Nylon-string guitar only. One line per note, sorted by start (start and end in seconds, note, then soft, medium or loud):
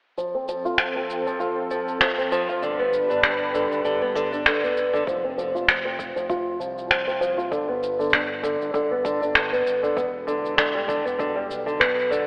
0.17 0.33 F3 medium
0.34 0.47 C4 medium
0.48 0.64 F3 medium
0.65 0.77 F4 medium
0.79 0.94 F3 medium
0.96 1.25 C4 medium
1.27 1.39 F3 medium
1.40 1.69 F4 medium
1.71 2.00 F3 medium
2.01 2.17 F3 medium
2.18 2.30 C4 medium
2.32 2.47 F3 medium
2.49 2.61 F4 medium
2.62 2.78 D3 medium
2.79 3.08 B3 medium
3.10 3.22 D3 medium
3.23 3.53 D4 medium
3.54 3.83 D3 medium
3.84 4.00 D3 medium
4.02 4.14 B3 medium
4.15 4.31 D3 medium
4.32 4.45 D4 medium
4.46 4.62 D3 medium
4.63 4.92 B3 medium
4.93 5.06 D3 medium
5.07 5.23 F3 medium
5.24 5.37 C4 medium
5.37 5.53 F3 medium
5.55 5.67 F4 medium
5.68 5.84 F3 medium
5.85 6.14 C4 medium
6.16 6.28 F3 medium
6.29 6.59 F4 medium
6.59 6.89 F3 medium
6.90 7.06 F3 medium
7.07 7.20 C4 medium
7.21 7.37 F3 medium
7.37 7.50 F4 medium
7.51 7.67 D3 medium
7.68 7.98 B3 medium
7.99 8.12 D3 medium
8.13 8.42 D4 medium
8.43 8.72 D3 medium
8.74 8.90 D3 medium
8.91 9.04 B3 medium
9.04 9.20 D3 medium
9.21 9.34 D4 medium
9.35 9.51 D3 medium
9.52 9.82 B3 medium
9.83 9.95 D3 medium
9.97 10.26 B3 medium
10.27 10.56 D3 medium
10.57 10.73 D3 medium
10.75 10.87 G3 medium
10.88 11.04 D3 medium
11.05 11.18 B3 medium
11.19 11.35 D3 medium
11.35 11.65 G3 medium
11.66 11.79 D3 medium
11.80 12.10 B3 medium
12.10 12.27 D3 medium